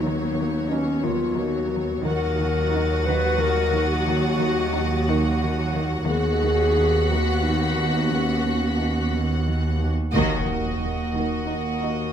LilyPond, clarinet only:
\new Staff \with { instrumentName = "Clarinet" } { \time 3/4 \key ees \minor \tempo 4 = 89 ees'4 cis'8 f'8 fis'4 | bes'4. ces''8 bes'4 | ges'4. r4. | aes'4. fis'8 ees'4 |
cis'2 r4 | r2. | }